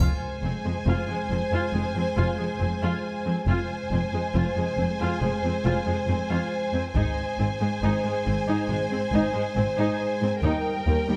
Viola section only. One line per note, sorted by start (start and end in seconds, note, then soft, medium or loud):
0.00 0.20 F4 soft
0.44 0.52 C4 soft
0.65 0.73 G#3 soft
0.87 1.07 F4 soft
1.09 1.17 G#3 soft
1.31 1.39 C4 soft
1.53 1.73 F4 soft
1.74 1.82 G#3 soft
1.96 2.04 C4 soft
2.17 2.37 F4 soft
2.38 2.46 G#3 soft
2.60 2.68 C4 soft
2.82 3.02 F4 soft
3.26 3.34 C4 soft
3.47 3.67 F4 soft
3.92 4.00 C4 soft
4.13 4.21 G#3 soft
4.35 4.55 F4 soft
4.57 4.65 G#3 soft
4.78 4.86 C4 soft
5.01 5.20 F4 soft
5.21 5.29 G#3 soft
5.44 5.52 C4 soft
5.64 5.85 F4 soft
5.86 5.94 G#3 soft
6.08 6.16 C4 soft
6.29 6.50 F4 soft
6.73 6.81 C4 soft
6.95 7.15 D#4 soft
7.39 7.47 C4 soft
7.61 7.69 G#3 soft
7.82 8.03 D#4 soft
8.04 8.12 G#3 soft
8.26 8.34 C4 soft
8.48 8.68 D#4 soft
8.70 8.78 G#3 soft
8.91 8.99 C4 soft
9.13 9.33 D#4 medium
9.34 9.42 G#3 soft
9.56 9.64 C4 soft
9.78 9.98 D#4 medium
10.22 10.30 C4 soft
10.44 10.64 D#4 medium
10.87 10.95 A#3 soft
11.09 11.17 G3 soft